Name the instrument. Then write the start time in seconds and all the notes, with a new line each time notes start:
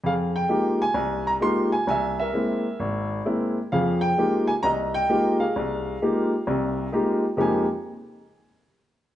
upright piano
0.04 F2 G#4 F5
0.36 G5
0.49 G#3 A#3 D#4 F4 G4
0.82 G#5
0.94 C2
1.27 A#5
1.40 G#3 A#3 D#4 F4 G4 C6
1.72 G#5
1.87 C2 E5 G#5
2.19 A#4 E5
2.33 G#3 A#3 C4 E4
2.80 G#1
3.25 G#3 A#3 C4 E4
3.72 F2 F3 G#4 F5
4.01 G5
4.18 G#3 A#3 D#4 F4 G4
4.47 G#5
4.63 C2 D#5 A#5
4.94 G5
5.09 G#3 A#3 D#4 F4 G4
5.40 G#4 F5
5.56 C2
6.02 G#3 A#3 D#4 F4 G4
6.47 C2 C3
6.92 G#3 A#3 D#4 F4 G4
7.37 F2 F3 G#3 A#3 D#4 G4 G#5